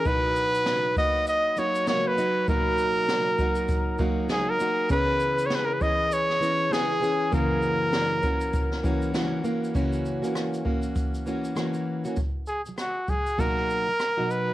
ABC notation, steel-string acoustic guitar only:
X:1
M:4/4
L:1/16
Q:"Swing 16ths" 1/4=99
K:B
V:1 name="Steel-string acoustic guitar"
[B,,F,DF]6 [F,A,DF]4 [F,A,DF]2 [F,A,DF]2 [F,DF]2 | [B,,F,A,DF]6 [F,A,DF]4 [F,A,DF]2 [F,A,DF]2 [F,A,DF]2 | [C,E,B,CG]6 [E,B,CG]4 [E,B,CG]2 [E,B,CG]2 [E,B,CG]2 | [F,,C,E,A,CF]6 [E,A,CF]4 [E,A,CF]2 [E,A,CF]2 [E,A,CF]2 |
[F,,C,E,A,CF]3 [E,A,CF]3 [E,A,CF]4 [E,A,CF]2 [E,A,CF]3 [E,A,CF] | [B,,F,]2 z [B,,F,]2 z [B,,F,]2 [B,,F,A,DF]3 [B,,F,]2 [B,,F,DF]3 |]